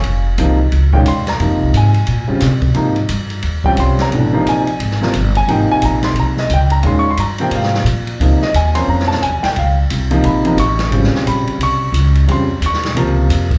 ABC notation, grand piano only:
X:1
M:4/4
L:1/8
Q:"Swing" 1/4=176
K:Dblyd
V:1 name="Grand piano"
[dfad'] z4 g c' b- | b2 a3 z3 | z4 z g c' b- | b2 a3 z2 a |
g a b c' b e g b | (3c' d' c' b g f2 z2 | z e a c' b =a _a g | f z3 _c'2 d'2- |
d' z _c'2 d'3 z | c'2 d'3 z3 |]
V:2 name="Grand piano" clef=bass
z2 [C,F,B,E] z2 [B,,E,A,D] z2 | [C,F,B,E]3 z2 [D,G,CF] z2 | [C,F,B,E] z4 [G,CDF]3 | [_C,_F,=A,=D] [=C,=F,B,E]2 z2 [C,F,B,F] z2 |
[C,F,B,E]4- [C,F,B,E] z3 | [B,,E,A,D] z2 [C,F,B,C]3 z2 | [C,F,B,E] z2 [F,B,CD]3 z2 | z3 [C,F,B,E]2 [C,F,B,E] z2 |
[D,G,CF]4- [D,G,CF] z3 | [D,G,CF] z3 [C,F,B,F]3 z |]